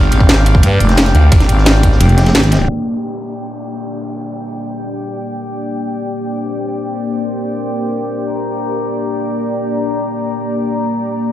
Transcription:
Already playing: detuned saw bass G1, ambient pad A#3 D4 G4 G5, string section G4 D5 F5
0.03 ride
0.12 fm bass G#1, closed hi-hat, ride
0.20 kick
0.29 snare, closed hi-hat, ride
0.46 closed hi-hat, ride
0.55 kick
0.63 fm bass G2, closed hi-hat, ride
0.80 fm bass F1, closed hi-hat, ride
0.89 snare, closed hi-hat
0.97 snare, closed hi-hat, ride
1.06 snare, closed hi-hat
1.15 detuned saw bass D2, closed hi-hat, ride
1.32 detuned saw bass G1, kick, closed hi-hat, ride
1.40 snare, closed hi-hat
1.49 fm bass G#1, closed hi-hat, ride
1.58 snare
1.65 snare, closed hi-hat, ride
1.83 kick, closed hi-hat, ride
1.92 snare
2.00 detuned saw bass F1, closed hi-hat, ride
2.09 closed hi-hat
2.18 snare, closed hi-hat, ride
2.26 snare, closed hi-hat, ride
2.35 detuned saw bass G#1, snare, closed hi-hat, ride
2.43 snare, closed hi-hat
2.51 snare, closed hi-hat, ride
2.69 ambient pad A#3 D4 G4 D5, string section G4, downlifter
2.82 string section G5
2.93 string section D5
5.43 ambient pad C5
8.18 ambient pad D5
8.30 string section A#5
10.92 ambient pad C5

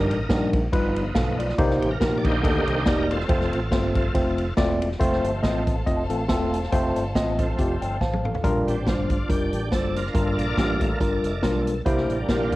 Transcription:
Already playing: tine electric piano G2 G3 D4 D#4 A#4, tonewheel organ D3 F3 G3 A#4 D#5
0.10 fingered electric bass A1, ride
0.29 fingered electric bass A#1, tine electric piano G3 D4 D#4 A#4, kick, snare, ride
0.53 kick, ride
0.72 fingered electric bass G1, tine electric piano G2 G3 D#4 F4 B4, tonewheel organ F3 B3 D#4, kick, ride
0.96 ride
1.15 fingered electric bass B1, tine electric piano A4 F5, kick, snare, ride
1.39 tine electric piano F4 D5, ride
1.49 snare
1.58 fingered electric bass C2, tine electric piano C3 A#3 D#4 G4 C5, kick, ride
1.70 snare
1.81 fingered electric bass A1, tonewheel organ G4, ride
1.91 tonewheel organ A#4
2.00 fingered electric bass A#1, tine electric piano A#3 D#4 G4 A#4, kick, snare, ride
2.18 tonewheel organ D5
2.25 tonewheel organ D#3 A#3 D4 D#4 G4 C5, kick, ride
2.43 fingered electric bass D2, tine electric piano A#3 D#4 G4 A4, kick, ride
2.68 fingered electric bass C2, ride
2.86 fingered electric bass E1, tine electric piano A#3 D#4 G4 D5, tonewheel organ A#4, kick, snare, ride
3.11 tonewheel organ C4 F4 A4, ride
3.20 snare
3.28 fingered electric bass F1, tonewheel organ F3 A3 C4, tine electric piano A3 C4 F4 C5, kick, ride
3.41 snare
3.53 fingered electric bass A1, ride
3.71 fingered electric bass G1, tine electric piano A3 C4 F4 C5, kick, snare, ride
3.95 tonewheel organ F3 A3 C4, kick, ride
4.14 fingered electric bass F1, tine electric piano A3 C4 F4 C5, kick, ride
4.38 ride
4.57 fingered electric bass E1, tine electric piano A3 C4 F4 D5, kick, snare, ride
4.82 ride
4.92 snare
5.00 fingered electric bass F1, tonewheel organ F3 A3 C4, tine electric piano A3 C4 F4 C5, string section A4 C5 F5 A5, kick, closed hi-hat
5.12 snare
5.24 fingered electric bass G1, closed hi-hat
5.42 fingered electric bass A1, tine electric piano A3 C4 F4 D#5, kick, snare, closed hi-hat
5.67 kick, closed hi-hat
5.86 fingered electric bass F1, tine electric piano A3 C4 F4 D#5, kick, closed hi-hat
6.10 fingered electric bass A1, tine electric piano A3 C4 F4 A4, closed hi-hat
6.28 fingered electric bass E1, tine electric piano A3 C4 F4 A4, kick, snare, closed hi-hat
6.53 closed hi-hat
6.63 snare
6.72 fingered electric bass F1, tine electric piano A3 C4 F4 C5, kick, closed hi-hat
6.96 fingered electric bass G1, closed hi-hat
7.15 fingered electric bass A1, tine electric piano A3 C4 F4 D#5, kick, snare, closed hi-hat
7.38 tonewheel organ F3 A3 C4, kick, closed hi-hat
7.58 fingered electric bass F1, tine electric piano A3 C4 F4 G4, kick, closed hi-hat
7.82 fingered electric bass G1, tine electric piano G5, closed hi-hat
8.01 fingered electric bass A1, tine electric piano C5 F5 A5, kick, snare
8.13 high tom
8.25 tine electric piano A4 F5, mid tom
8.35 floor tom
8.44 fingered electric bass A#1, tine electric piano A#2 G3 D4 F4 A#4, kick, closed hi-hat
8.67 fingered electric bass A1, tonewheel organ G3 C4 D4, closed hi-hat
8.86 fingered electric bass G1, tine electric piano G3 D4 F4 C5, tonewheel organ D4 F4, kick, snare, closed hi-hat
9.10 kick, closed hi-hat
9.29 fingered electric bass F1, tine electric piano G3 D4 F4 A#4, tonewheel organ D4 G4, kick, closed hi-hat
9.53 fingered electric bass A1, closed hi-hat
9.72 fingered electric bass F#1, tine electric piano G3 D4 F4 C5, tonewheel organ A4, kick, snare, closed hi-hat
9.96 tonewheel organ D4 F4 A#4, closed hi-hat
10.06 snare
10.14 fingered electric bass G1, tine electric piano G2 G3 D4 F4 A#4, tonewheel organ A#3 F4 A4, kick, closed hi-hat
10.38 fingered electric bass A#1, tonewheel organ F4 A#4 D5, closed hi-hat
10.57 fingered electric bass A1, tine electric piano G3 D4 F4 G4, kick, snare, closed hi-hat
10.81 tonewheel organ A3 A#3 F4, kick, closed hi-hat
11.00 fingered electric bass G1, tine electric piano G3 D4 F4 A#4, kick, closed hi-hat
11.23 fingered electric bass F1, closed hi-hat
11.42 fingered electric bass B1, tine electric piano G3 D4 F4 A#4, kick, snare, closed hi-hat
11.67 closed hi-hat
11.85 fingered electric bass C2, tine electric piano C3 A#3 E4 G4 C5, tonewheel organ G3 A#3 D4, kick, closed hi-hat
11.98 snare
12.09 fingered electric bass A1, closed hi-hat
12.28 fingered electric bass A#1, tine electric piano A#3 E4 G4 A#4, tonewheel organ A#3 F4, kick, snare, closed hi-hat
12.52 kick, closed hi-hat

